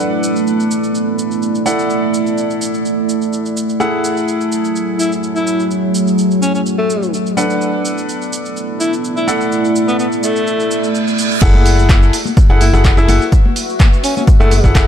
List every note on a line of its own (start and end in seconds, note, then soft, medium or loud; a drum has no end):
0.00 7.37 A3 medium
0.00 2.36 B3 medium
0.00 1.63 D4 medium
0.00 7.37 E4 medium
0.00 1.63 A4 medium
0.00 1.63 B4 medium
0.00 1.63 F#5 medium
0.23 shaker medium
0.36 shaker soft
0.47 shaker soft
0.60 3.80 D5 medium
0.60 shaker soft
0.71 shaker medium
0.84 shaker soft
0.95 shaker soft
1.19 shaker medium
1.31 shaker soft
1.42 shaker soft
1.55 shaker soft
1.66 3.77 E4 medium
1.66 3.77 A4 medium
1.66 3.77 D5 medium
1.66 3.77 F#5 medium
1.66 shaker medium
1.79 shaker soft
1.90 shaker soft
2.14 shaker medium
2.27 shaker soft
2.38 shaker soft
2.50 shaker soft
2.62 shaker medium
2.74 shaker soft
2.85 shaker soft
3.09 shaker medium
3.22 shaker soft
3.33 shaker soft
3.46 shaker soft
3.57 shaker medium
3.69 shaker soft
3.80 7.37 F#3 loud
3.80 7.34 E4 medium
3.80 7.34 G#4 medium
3.80 7.34 A4 medium
3.80 7.34 F#5 medium
3.80 shaker soft
4.04 shaker medium
4.17 shaker soft
4.28 shaker soft
4.34 7.37 C#5 medium
4.41 shaker soft
4.52 shaker medium
4.65 shaker soft
4.76 shaker soft
4.99 5.12 E4 medium
4.99 shaker medium
5.12 shaker soft
5.23 shaker soft
5.35 5.70 E4 medium
5.35 shaker soft
5.47 shaker medium
5.60 shaker soft
5.71 shaker soft
5.95 shaker medium
6.07 shaker soft
6.18 shaker soft
6.31 shaker soft
6.42 6.50 C#4 medium
6.42 shaker medium
6.54 6.61 C#4 medium
6.54 shaker soft
6.66 shaker soft
6.78 7.13 A3 medium
6.90 shaker medium
7.03 shaker soft
7.14 shaker soft
7.26 shaker soft
7.37 10.14 B3 medium
7.37 9.25 D4 medium
7.37 9.25 A4 medium
7.37 9.25 B4 medium
7.37 9.25 F#5 medium
7.37 shaker medium
7.50 12.10 E4 medium
7.50 shaker soft
7.61 shaker soft
7.85 11.42 D5 medium
7.85 shaker medium
7.98 shaker soft
8.09 shaker soft
8.22 12.85 A3 medium
8.22 shaker soft
8.33 shaker medium
8.46 shaker soft
8.57 shaker soft
8.80 8.93 E4 medium
8.80 shaker medium
8.93 shaker soft
9.04 shaker soft
9.16 9.33 E4 medium
9.16 shaker soft
9.28 11.39 E4 medium
9.28 11.39 A4 medium
9.28 11.39 D5 medium
9.28 11.39 F#5 medium
9.28 shaker medium
9.41 shaker soft
9.52 shaker soft
9.65 shaker soft
9.76 shaker medium
9.88 9.95 B3 medium
9.88 shaker soft
9.99 10.07 B3 medium
9.99 shaker soft
10.12 shaker soft
10.23 10.90 A3 medium
10.23 shaker medium
10.36 shaker soft
10.46 reverse cymbal medium
10.46 shaker soft
10.60 shaker soft
10.71 shaker medium
10.84 shaker soft
10.95 shaker soft
11.08 shaker soft
11.19 shaker medium
11.31 shaker soft
11.42 12.11 F#1 loud
11.42 12.13 E4 loud
11.42 14.87 F#4 medium
11.42 12.13 G#4 loud
11.42 12.13 A4 medium
11.42 12.13 F#5 loud
11.42 kick loud
11.42 crash loud
11.42 tambourine medium
11.42 shaker soft
11.54 tambourine soft
11.54 high conga loud
11.65 14.87 B4 medium
11.65 open hi-hat loud
11.65 tambourine medium
11.65 shaker medium
11.73 14.87 E5 medium
11.78 tambourine soft
11.78 shaker soft
11.89 kick loud
11.89 snare loud
11.89 clap loud
11.89 tambourine medium
11.89 high conga medium
11.89 shaker soft
12.02 tambourine soft
12.02 shaker soft
12.13 open hi-hat loud
12.13 tambourine medium
12.13 shaker medium
12.25 tambourine soft
12.25 high conga medium
12.25 shaker soft
12.36 kick loud
12.36 tambourine medium
12.36 shaker soft
12.49 12.71 F#1 loud
12.49 12.62 E4 medium
12.49 12.62 G#4 medium
12.49 12.62 A4 medium
12.49 12.62 F#5 loud
12.49 tambourine soft
12.61 12.74 E4 medium
12.61 open hi-hat loud
12.61 tambourine loud
12.61 tambourine medium
12.61 high conga medium
12.61 shaker medium
12.73 12.95 F#1 loud
12.73 12.94 E4 medium
12.73 12.94 G#4 medium
12.73 12.94 A4 medium
12.73 12.94 F#5 medium
12.73 snare medium
12.73 tambourine soft
12.73 shaker soft
12.84 kick loud
12.84 snare loud
12.84 clap loud
12.84 tambourine medium
12.84 shaker soft
12.97 13.06 F#1 loud
12.97 13.32 E4 loud
12.97 13.06 E4 medium
12.97 13.06 G#4 medium
12.97 13.06 A4 medium
12.97 13.06 E5 medium
12.97 snare medium
12.97 tambourine soft
12.97 shaker soft
13.08 13.19 F#1 loud
13.08 13.22 E4 medium
13.08 13.22 G#4 medium
13.08 13.22 A4 medium
13.08 13.22 F#5 medium
13.08 open hi-hat loud
13.08 tambourine medium
13.08 tambourine loud
13.08 high conga medium
13.08 shaker medium
13.20 snare medium
13.20 tambourine soft
13.20 shaker soft
13.32 kick loud
13.32 tambourine medium
13.32 shaker soft
13.45 tambourine soft
13.45 high conga medium
13.56 open hi-hat loud
13.56 tambourine medium
13.56 shaker medium
13.69 tambourine soft
13.69 shaker soft
13.79 kick loud
13.79 snare loud
13.79 clap loud
13.79 tambourine medium
13.79 high conga medium
13.79 shaker soft
13.92 tambourine soft
13.92 shaker soft
14.03 14.12 C#4 medium
14.03 open hi-hat medium
14.03 open hi-hat loud
14.03 tambourine medium
14.03 shaker medium
14.16 14.24 C#4 medium
14.16 tambourine soft
14.16 high conga loud
14.16 shaker soft
14.27 kick loud
14.27 tambourine medium
14.27 shaker soft
14.40 14.61 F#1 loud
14.40 14.75 A3 medium
14.40 14.52 E4 loud
14.40 14.52 G#4 medium
14.40 14.52 A4 medium
14.40 14.52 F#5 loud
14.40 tambourine soft
14.40 shaker soft
14.51 snare medium
14.51 open hi-hat loud
14.51 tambourine medium
14.51 high conga medium
14.51 shaker medium
14.64 14.85 F#1 medium
14.64 14.85 E4 medium
14.64 14.85 G#4 medium
14.64 14.85 A4 medium
14.64 14.85 F#5 medium
14.64 kick medium
14.64 snare medium
14.64 tambourine soft
14.64 shaker soft
14.75 kick loud
14.75 snare loud
14.75 clap loud
14.75 tambourine medium
14.75 shaker soft